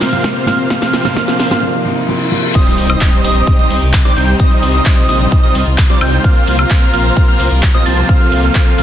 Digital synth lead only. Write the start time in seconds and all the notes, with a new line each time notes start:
0.13 F6
0.47 F6
0.70 F6
1.05 F6
1.17 F6
1.51 F6
2.55 D#6
2.90 D#6
3.24 D#6
3.59 D#6
4.05 D6
4.17 G6
4.40 D#6
4.74 D#6
5.09 D#6
5.43 D#6
5.90 D6
6.01 G6
6.24 F6
6.59 F6
6.93 F6
7.28 F6
7.74 D#6
7.86 A6
8.09 F6
8.44 F6
8.78 F6